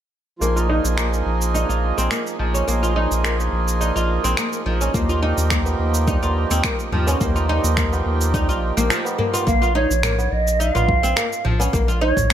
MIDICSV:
0, 0, Header, 1, 7, 480
1, 0, Start_track
1, 0, Tempo, 566038
1, 350, Time_signature, 4, 2, 24, 8
1, 10456, End_track
2, 0, Start_track
2, 0, Title_t, "Bansuri"
2, 0, Program_c, 0, 73
2, 8032, Note_on_c, 0, 77, 107
2, 8254, Note_off_c, 0, 77, 0
2, 8274, Note_on_c, 0, 73, 89
2, 8750, Note_on_c, 0, 75, 92
2, 8763, Note_off_c, 0, 73, 0
2, 8986, Note_on_c, 0, 77, 104
2, 8998, Note_off_c, 0, 75, 0
2, 9708, Note_off_c, 0, 77, 0
2, 10187, Note_on_c, 0, 73, 104
2, 10456, Note_off_c, 0, 73, 0
2, 10456, End_track
3, 0, Start_track
3, 0, Title_t, "Harmonium"
3, 0, Program_c, 1, 20
3, 332, Note_on_c, 1, 53, 90
3, 343, Note_on_c, 1, 58, 74
3, 354, Note_on_c, 1, 63, 77
3, 365, Note_on_c, 1, 68, 98
3, 1994, Note_off_c, 1, 53, 0
3, 2000, Note_off_c, 1, 58, 0
3, 2005, Note_off_c, 1, 63, 0
3, 2011, Note_off_c, 1, 68, 0
3, 2020, Note_on_c, 1, 53, 73
3, 2025, Note_on_c, 1, 58, 73
3, 2032, Note_on_c, 1, 63, 74
3, 2037, Note_on_c, 1, 68, 87
3, 2238, Note_off_c, 1, 53, 0
3, 2241, Note_off_c, 1, 58, 0
3, 2244, Note_off_c, 1, 63, 0
3, 2247, Note_off_c, 1, 68, 0
3, 2254, Note_on_c, 1, 53, 90
3, 2265, Note_on_c, 1, 58, 77
3, 2275, Note_on_c, 1, 63, 86
3, 2286, Note_on_c, 1, 68, 100
3, 3915, Note_off_c, 1, 53, 0
3, 3921, Note_off_c, 1, 58, 0
3, 3926, Note_off_c, 1, 63, 0
3, 3931, Note_off_c, 1, 68, 0
3, 3941, Note_on_c, 1, 53, 85
3, 3949, Note_on_c, 1, 58, 76
3, 3954, Note_on_c, 1, 63, 72
3, 3959, Note_on_c, 1, 68, 89
3, 4158, Note_off_c, 1, 53, 0
3, 4163, Note_off_c, 1, 58, 0
3, 4165, Note_off_c, 1, 63, 0
3, 4168, Note_off_c, 1, 68, 0
3, 4171, Note_on_c, 1, 53, 92
3, 4183, Note_on_c, 1, 58, 83
3, 4194, Note_on_c, 1, 63, 85
3, 4205, Note_on_c, 1, 67, 99
3, 5834, Note_off_c, 1, 53, 0
3, 5840, Note_off_c, 1, 58, 0
3, 5845, Note_off_c, 1, 63, 0
3, 5851, Note_off_c, 1, 67, 0
3, 5860, Note_on_c, 1, 53, 81
3, 5866, Note_on_c, 1, 58, 78
3, 5871, Note_on_c, 1, 63, 77
3, 5878, Note_on_c, 1, 67, 93
3, 6078, Note_off_c, 1, 53, 0
3, 6081, Note_off_c, 1, 58, 0
3, 6084, Note_off_c, 1, 63, 0
3, 6087, Note_off_c, 1, 67, 0
3, 6092, Note_on_c, 1, 53, 95
3, 6104, Note_on_c, 1, 58, 85
3, 6114, Note_on_c, 1, 63, 88
3, 6127, Note_on_c, 1, 67, 103
3, 7403, Note_off_c, 1, 53, 0
3, 7409, Note_off_c, 1, 58, 0
3, 7414, Note_off_c, 1, 63, 0
3, 7421, Note_off_c, 1, 67, 0
3, 7423, Note_on_c, 1, 53, 81
3, 7434, Note_on_c, 1, 58, 72
3, 7445, Note_on_c, 1, 63, 72
3, 7456, Note_on_c, 1, 67, 87
3, 7996, Note_off_c, 1, 53, 0
3, 8001, Note_off_c, 1, 58, 0
3, 8007, Note_off_c, 1, 63, 0
3, 8012, Note_off_c, 1, 67, 0
3, 10456, End_track
4, 0, Start_track
4, 0, Title_t, "Oud"
4, 0, Program_c, 2, 24
4, 351, Note_on_c, 2, 58, 74
4, 465, Note_off_c, 2, 58, 0
4, 477, Note_on_c, 2, 65, 62
4, 584, Note_off_c, 2, 65, 0
4, 588, Note_on_c, 2, 63, 91
4, 710, Note_off_c, 2, 63, 0
4, 828, Note_on_c, 2, 58, 72
4, 902, Note_off_c, 2, 58, 0
4, 1309, Note_on_c, 2, 63, 71
4, 1424, Note_off_c, 2, 63, 0
4, 1434, Note_on_c, 2, 65, 70
4, 1663, Note_off_c, 2, 65, 0
4, 1677, Note_on_c, 2, 60, 86
4, 1784, Note_off_c, 2, 60, 0
4, 1790, Note_on_c, 2, 58, 74
4, 1863, Note_off_c, 2, 58, 0
4, 2029, Note_on_c, 2, 53, 62
4, 2145, Note_off_c, 2, 53, 0
4, 2157, Note_on_c, 2, 61, 66
4, 2264, Note_off_c, 2, 61, 0
4, 2269, Note_on_c, 2, 58, 77
4, 2384, Note_off_c, 2, 58, 0
4, 2398, Note_on_c, 2, 65, 65
4, 2505, Note_off_c, 2, 65, 0
4, 2510, Note_on_c, 2, 63, 91
4, 2631, Note_off_c, 2, 63, 0
4, 2749, Note_on_c, 2, 58, 71
4, 2823, Note_off_c, 2, 58, 0
4, 3229, Note_on_c, 2, 63, 69
4, 3344, Note_off_c, 2, 63, 0
4, 3356, Note_on_c, 2, 65, 68
4, 3584, Note_off_c, 2, 65, 0
4, 3597, Note_on_c, 2, 60, 91
4, 3704, Note_off_c, 2, 60, 0
4, 3713, Note_on_c, 2, 58, 74
4, 3785, Note_off_c, 2, 58, 0
4, 3951, Note_on_c, 2, 53, 68
4, 4065, Note_off_c, 2, 53, 0
4, 4079, Note_on_c, 2, 61, 67
4, 4186, Note_off_c, 2, 61, 0
4, 4191, Note_on_c, 2, 58, 79
4, 4305, Note_off_c, 2, 58, 0
4, 4319, Note_on_c, 2, 65, 64
4, 4425, Note_off_c, 2, 65, 0
4, 4431, Note_on_c, 2, 63, 92
4, 4552, Note_off_c, 2, 63, 0
4, 4673, Note_on_c, 2, 58, 76
4, 4744, Note_off_c, 2, 58, 0
4, 5152, Note_on_c, 2, 63, 77
4, 5266, Note_off_c, 2, 63, 0
4, 5280, Note_on_c, 2, 65, 74
4, 5506, Note_off_c, 2, 65, 0
4, 5520, Note_on_c, 2, 60, 92
4, 5626, Note_off_c, 2, 60, 0
4, 5631, Note_on_c, 2, 58, 75
4, 5704, Note_off_c, 2, 58, 0
4, 5872, Note_on_c, 2, 53, 67
4, 5986, Note_off_c, 2, 53, 0
4, 5999, Note_on_c, 2, 61, 68
4, 6105, Note_off_c, 2, 61, 0
4, 6113, Note_on_c, 2, 58, 78
4, 6226, Note_off_c, 2, 58, 0
4, 6238, Note_on_c, 2, 65, 69
4, 6345, Note_off_c, 2, 65, 0
4, 6354, Note_on_c, 2, 63, 98
4, 6473, Note_off_c, 2, 63, 0
4, 6592, Note_on_c, 2, 58, 75
4, 6664, Note_off_c, 2, 58, 0
4, 7073, Note_on_c, 2, 63, 75
4, 7186, Note_off_c, 2, 63, 0
4, 7198, Note_on_c, 2, 65, 78
4, 7299, Note_off_c, 2, 65, 0
4, 7438, Note_on_c, 2, 58, 99
4, 7545, Note_off_c, 2, 58, 0
4, 7549, Note_on_c, 2, 53, 77
4, 7671, Note_off_c, 2, 53, 0
4, 7789, Note_on_c, 2, 58, 69
4, 7911, Note_off_c, 2, 58, 0
4, 7916, Note_on_c, 2, 65, 71
4, 8018, Note_off_c, 2, 65, 0
4, 8028, Note_on_c, 2, 58, 81
4, 8144, Note_off_c, 2, 58, 0
4, 8156, Note_on_c, 2, 65, 70
4, 8264, Note_off_c, 2, 65, 0
4, 8269, Note_on_c, 2, 63, 94
4, 8391, Note_off_c, 2, 63, 0
4, 8509, Note_on_c, 2, 58, 79
4, 8582, Note_off_c, 2, 58, 0
4, 8988, Note_on_c, 2, 63, 72
4, 9104, Note_off_c, 2, 63, 0
4, 9115, Note_on_c, 2, 65, 73
4, 9344, Note_off_c, 2, 65, 0
4, 9356, Note_on_c, 2, 60, 97
4, 9464, Note_off_c, 2, 60, 0
4, 9467, Note_on_c, 2, 58, 78
4, 9541, Note_off_c, 2, 58, 0
4, 9707, Note_on_c, 2, 53, 67
4, 9823, Note_off_c, 2, 53, 0
4, 9835, Note_on_c, 2, 61, 69
4, 9943, Note_off_c, 2, 61, 0
4, 9948, Note_on_c, 2, 58, 79
4, 10064, Note_off_c, 2, 58, 0
4, 10076, Note_on_c, 2, 65, 70
4, 10184, Note_off_c, 2, 65, 0
4, 10188, Note_on_c, 2, 63, 97
4, 10310, Note_off_c, 2, 63, 0
4, 10429, Note_on_c, 2, 58, 77
4, 10456, Note_off_c, 2, 58, 0
4, 10456, End_track
5, 0, Start_track
5, 0, Title_t, "Sub bass"
5, 0, Program_c, 3, 38
5, 349, Note_on_c, 3, 34, 89
5, 682, Note_off_c, 3, 34, 0
5, 717, Note_on_c, 3, 34, 99
5, 1039, Note_off_c, 3, 34, 0
5, 1069, Note_on_c, 3, 34, 88
5, 1402, Note_off_c, 3, 34, 0
5, 1437, Note_on_c, 3, 34, 85
5, 1634, Note_off_c, 3, 34, 0
5, 1680, Note_on_c, 3, 34, 80
5, 1772, Note_off_c, 3, 34, 0
5, 2032, Note_on_c, 3, 34, 84
5, 2233, Note_off_c, 3, 34, 0
5, 2273, Note_on_c, 3, 34, 89
5, 2605, Note_off_c, 3, 34, 0
5, 2640, Note_on_c, 3, 34, 96
5, 2961, Note_off_c, 3, 34, 0
5, 2989, Note_on_c, 3, 34, 82
5, 3322, Note_off_c, 3, 34, 0
5, 3359, Note_on_c, 3, 34, 84
5, 3555, Note_off_c, 3, 34, 0
5, 3597, Note_on_c, 3, 34, 79
5, 3691, Note_off_c, 3, 34, 0
5, 3950, Note_on_c, 3, 34, 85
5, 4152, Note_off_c, 3, 34, 0
5, 4193, Note_on_c, 3, 39, 88
5, 4524, Note_off_c, 3, 39, 0
5, 4558, Note_on_c, 3, 39, 98
5, 4880, Note_off_c, 3, 39, 0
5, 4912, Note_on_c, 3, 39, 86
5, 5244, Note_off_c, 3, 39, 0
5, 5279, Note_on_c, 3, 39, 82
5, 5475, Note_off_c, 3, 39, 0
5, 5518, Note_on_c, 3, 39, 75
5, 5611, Note_off_c, 3, 39, 0
5, 5868, Note_on_c, 3, 39, 92
5, 6071, Note_off_c, 3, 39, 0
5, 6113, Note_on_c, 3, 39, 98
5, 6445, Note_off_c, 3, 39, 0
5, 6479, Note_on_c, 3, 39, 100
5, 6800, Note_off_c, 3, 39, 0
5, 6833, Note_on_c, 3, 39, 87
5, 7197, Note_on_c, 3, 34, 79
5, 7210, Note_off_c, 3, 39, 0
5, 7394, Note_off_c, 3, 34, 0
5, 7438, Note_on_c, 3, 34, 74
5, 7550, Note_off_c, 3, 34, 0
5, 8031, Note_on_c, 3, 34, 86
5, 8364, Note_off_c, 3, 34, 0
5, 8399, Note_on_c, 3, 34, 102
5, 8721, Note_off_c, 3, 34, 0
5, 8752, Note_on_c, 3, 34, 91
5, 9084, Note_off_c, 3, 34, 0
5, 9119, Note_on_c, 3, 34, 85
5, 9315, Note_off_c, 3, 34, 0
5, 9359, Note_on_c, 3, 34, 77
5, 9452, Note_off_c, 3, 34, 0
5, 9712, Note_on_c, 3, 34, 93
5, 9913, Note_off_c, 3, 34, 0
5, 9952, Note_on_c, 3, 34, 94
5, 10284, Note_off_c, 3, 34, 0
5, 10320, Note_on_c, 3, 34, 103
5, 10456, Note_off_c, 3, 34, 0
5, 10456, End_track
6, 0, Start_track
6, 0, Title_t, "Tabla"
6, 4798, Note_on_c, 9, 60, 68
6, 4798, Note_on_c, 9, 63, 37
6, 4883, Note_off_c, 9, 60, 0
6, 4883, Note_off_c, 9, 63, 0
6, 5277, Note_on_c, 9, 60, 53
6, 5362, Note_off_c, 9, 60, 0
6, 5876, Note_on_c, 9, 64, 85
6, 5961, Note_off_c, 9, 64, 0
6, 5993, Note_on_c, 9, 60, 77
6, 5994, Note_on_c, 9, 63, 59
6, 6078, Note_off_c, 9, 60, 0
6, 6079, Note_off_c, 9, 63, 0
6, 6232, Note_on_c, 9, 60, 47
6, 6317, Note_off_c, 9, 60, 0
6, 6718, Note_on_c, 9, 63, 45
6, 6722, Note_on_c, 9, 60, 65
6, 6803, Note_off_c, 9, 63, 0
6, 6806, Note_off_c, 9, 60, 0
6, 7432, Note_on_c, 9, 63, 31
6, 7516, Note_off_c, 9, 63, 0
6, 7677, Note_on_c, 9, 60, 78
6, 7761, Note_off_c, 9, 60, 0
6, 7792, Note_on_c, 9, 64, 95
6, 7795, Note_on_c, 9, 63, 34
6, 7877, Note_off_c, 9, 64, 0
6, 7880, Note_off_c, 9, 63, 0
6, 7919, Note_on_c, 9, 60, 76
6, 8003, Note_off_c, 9, 60, 0
6, 8159, Note_on_c, 9, 60, 54
6, 8244, Note_off_c, 9, 60, 0
6, 8399, Note_on_c, 9, 63, 34
6, 8484, Note_off_c, 9, 63, 0
6, 8637, Note_on_c, 9, 60, 74
6, 8641, Note_on_c, 9, 63, 56
6, 8722, Note_off_c, 9, 60, 0
6, 8726, Note_off_c, 9, 63, 0
6, 9121, Note_on_c, 9, 60, 66
6, 9206, Note_off_c, 9, 60, 0
6, 9226, Note_on_c, 9, 63, 44
6, 9230, Note_on_c, 9, 64, 76
6, 9311, Note_off_c, 9, 63, 0
6, 9315, Note_off_c, 9, 64, 0
6, 9834, Note_on_c, 9, 60, 79
6, 9841, Note_on_c, 9, 63, 51
6, 9918, Note_off_c, 9, 60, 0
6, 9926, Note_off_c, 9, 63, 0
6, 10456, End_track
7, 0, Start_track
7, 0, Title_t, "Drums"
7, 356, Note_on_c, 9, 69, 50
7, 441, Note_off_c, 9, 69, 0
7, 484, Note_on_c, 9, 69, 29
7, 569, Note_off_c, 9, 69, 0
7, 722, Note_on_c, 9, 69, 60
7, 807, Note_off_c, 9, 69, 0
7, 828, Note_on_c, 9, 26, 86
7, 834, Note_on_c, 9, 69, 45
7, 912, Note_off_c, 9, 26, 0
7, 919, Note_off_c, 9, 69, 0
7, 963, Note_on_c, 9, 69, 26
7, 1048, Note_off_c, 9, 69, 0
7, 1202, Note_on_c, 9, 69, 62
7, 1287, Note_off_c, 9, 69, 0
7, 1316, Note_on_c, 9, 69, 49
7, 1401, Note_off_c, 9, 69, 0
7, 1443, Note_on_c, 9, 69, 29
7, 1528, Note_off_c, 9, 69, 0
7, 1683, Note_on_c, 9, 69, 57
7, 1768, Note_off_c, 9, 69, 0
7, 1787, Note_on_c, 9, 26, 86
7, 1794, Note_on_c, 9, 69, 49
7, 1872, Note_off_c, 9, 26, 0
7, 1879, Note_off_c, 9, 69, 0
7, 1923, Note_on_c, 9, 69, 28
7, 2008, Note_off_c, 9, 69, 0
7, 2163, Note_on_c, 9, 69, 58
7, 2248, Note_off_c, 9, 69, 0
7, 2275, Note_on_c, 9, 69, 50
7, 2360, Note_off_c, 9, 69, 0
7, 2405, Note_on_c, 9, 69, 30
7, 2489, Note_off_c, 9, 69, 0
7, 2644, Note_on_c, 9, 69, 60
7, 2729, Note_off_c, 9, 69, 0
7, 2752, Note_on_c, 9, 26, 90
7, 2759, Note_on_c, 9, 69, 51
7, 2837, Note_off_c, 9, 26, 0
7, 2844, Note_off_c, 9, 69, 0
7, 2884, Note_on_c, 9, 69, 31
7, 2969, Note_off_c, 9, 69, 0
7, 3122, Note_on_c, 9, 69, 63
7, 3207, Note_off_c, 9, 69, 0
7, 3235, Note_on_c, 9, 69, 52
7, 3320, Note_off_c, 9, 69, 0
7, 3364, Note_on_c, 9, 69, 32
7, 3449, Note_off_c, 9, 69, 0
7, 3602, Note_on_c, 9, 69, 62
7, 3687, Note_off_c, 9, 69, 0
7, 3708, Note_on_c, 9, 26, 86
7, 3715, Note_on_c, 9, 69, 48
7, 3793, Note_off_c, 9, 26, 0
7, 3800, Note_off_c, 9, 69, 0
7, 3840, Note_on_c, 9, 69, 32
7, 3925, Note_off_c, 9, 69, 0
7, 4082, Note_on_c, 9, 69, 61
7, 4167, Note_off_c, 9, 69, 0
7, 4192, Note_on_c, 9, 36, 99
7, 4196, Note_on_c, 9, 69, 56
7, 4277, Note_off_c, 9, 36, 0
7, 4280, Note_off_c, 9, 69, 0
7, 4321, Note_on_c, 9, 69, 30
7, 4406, Note_off_c, 9, 69, 0
7, 4562, Note_on_c, 9, 69, 65
7, 4647, Note_off_c, 9, 69, 0
7, 4668, Note_on_c, 9, 26, 88
7, 4672, Note_on_c, 9, 36, 94
7, 4674, Note_on_c, 9, 69, 52
7, 4752, Note_off_c, 9, 26, 0
7, 4757, Note_off_c, 9, 36, 0
7, 4759, Note_off_c, 9, 69, 0
7, 4801, Note_on_c, 9, 69, 33
7, 4886, Note_off_c, 9, 69, 0
7, 5041, Note_on_c, 9, 69, 67
7, 5125, Note_off_c, 9, 69, 0
7, 5153, Note_on_c, 9, 36, 110
7, 5154, Note_on_c, 9, 69, 52
7, 5238, Note_off_c, 9, 36, 0
7, 5239, Note_off_c, 9, 69, 0
7, 5282, Note_on_c, 9, 69, 32
7, 5367, Note_off_c, 9, 69, 0
7, 5520, Note_on_c, 9, 69, 63
7, 5605, Note_off_c, 9, 69, 0
7, 5627, Note_on_c, 9, 26, 90
7, 5633, Note_on_c, 9, 36, 97
7, 5634, Note_on_c, 9, 69, 51
7, 5712, Note_off_c, 9, 26, 0
7, 5718, Note_off_c, 9, 36, 0
7, 5719, Note_off_c, 9, 69, 0
7, 5762, Note_on_c, 9, 69, 34
7, 5847, Note_off_c, 9, 69, 0
7, 6003, Note_on_c, 9, 69, 62
7, 6088, Note_off_c, 9, 69, 0
7, 6113, Note_on_c, 9, 36, 101
7, 6115, Note_on_c, 9, 69, 52
7, 6198, Note_off_c, 9, 36, 0
7, 6200, Note_off_c, 9, 69, 0
7, 6244, Note_on_c, 9, 69, 32
7, 6329, Note_off_c, 9, 69, 0
7, 6483, Note_on_c, 9, 69, 69
7, 6568, Note_off_c, 9, 69, 0
7, 6589, Note_on_c, 9, 26, 85
7, 6593, Note_on_c, 9, 36, 99
7, 6595, Note_on_c, 9, 69, 49
7, 6674, Note_off_c, 9, 26, 0
7, 6678, Note_off_c, 9, 36, 0
7, 6680, Note_off_c, 9, 69, 0
7, 6724, Note_on_c, 9, 69, 30
7, 6809, Note_off_c, 9, 69, 0
7, 6964, Note_on_c, 9, 69, 68
7, 7049, Note_off_c, 9, 69, 0
7, 7072, Note_on_c, 9, 36, 107
7, 7077, Note_on_c, 9, 69, 53
7, 7157, Note_off_c, 9, 36, 0
7, 7162, Note_off_c, 9, 69, 0
7, 7206, Note_on_c, 9, 69, 31
7, 7291, Note_off_c, 9, 69, 0
7, 7445, Note_on_c, 9, 69, 64
7, 7530, Note_off_c, 9, 69, 0
7, 7550, Note_on_c, 9, 26, 83
7, 7557, Note_on_c, 9, 69, 51
7, 7635, Note_off_c, 9, 26, 0
7, 7642, Note_off_c, 9, 69, 0
7, 7687, Note_on_c, 9, 69, 32
7, 7771, Note_off_c, 9, 69, 0
7, 7926, Note_on_c, 9, 69, 61
7, 8010, Note_off_c, 9, 69, 0
7, 8032, Note_on_c, 9, 36, 108
7, 8040, Note_on_c, 9, 69, 50
7, 8117, Note_off_c, 9, 36, 0
7, 8124, Note_off_c, 9, 69, 0
7, 8165, Note_on_c, 9, 69, 28
7, 8250, Note_off_c, 9, 69, 0
7, 8405, Note_on_c, 9, 69, 59
7, 8490, Note_off_c, 9, 69, 0
7, 8508, Note_on_c, 9, 26, 98
7, 8508, Note_on_c, 9, 45, 70
7, 8515, Note_on_c, 9, 69, 48
7, 8593, Note_off_c, 9, 26, 0
7, 8593, Note_off_c, 9, 45, 0
7, 8600, Note_off_c, 9, 69, 0
7, 8643, Note_on_c, 9, 69, 30
7, 8728, Note_off_c, 9, 69, 0
7, 8884, Note_on_c, 9, 69, 66
7, 8969, Note_off_c, 9, 69, 0
7, 8998, Note_on_c, 9, 69, 53
7, 9082, Note_off_c, 9, 69, 0
7, 9118, Note_on_c, 9, 45, 71
7, 9125, Note_on_c, 9, 69, 33
7, 9203, Note_off_c, 9, 45, 0
7, 9210, Note_off_c, 9, 69, 0
7, 9231, Note_on_c, 9, 36, 98
7, 9316, Note_off_c, 9, 36, 0
7, 9365, Note_on_c, 9, 69, 61
7, 9450, Note_off_c, 9, 69, 0
7, 9470, Note_on_c, 9, 26, 93
7, 9477, Note_on_c, 9, 69, 50
7, 9555, Note_off_c, 9, 26, 0
7, 9562, Note_off_c, 9, 69, 0
7, 9604, Note_on_c, 9, 69, 33
7, 9689, Note_off_c, 9, 69, 0
7, 9710, Note_on_c, 9, 45, 78
7, 9795, Note_off_c, 9, 45, 0
7, 9847, Note_on_c, 9, 69, 60
7, 9932, Note_off_c, 9, 69, 0
7, 9952, Note_on_c, 9, 36, 111
7, 9958, Note_on_c, 9, 69, 56
7, 10036, Note_off_c, 9, 36, 0
7, 10043, Note_off_c, 9, 69, 0
7, 10086, Note_on_c, 9, 69, 32
7, 10171, Note_off_c, 9, 69, 0
7, 10319, Note_on_c, 9, 36, 66
7, 10319, Note_on_c, 9, 45, 77
7, 10325, Note_on_c, 9, 69, 67
7, 10403, Note_off_c, 9, 45, 0
7, 10404, Note_off_c, 9, 36, 0
7, 10410, Note_off_c, 9, 69, 0
7, 10456, End_track
0, 0, End_of_file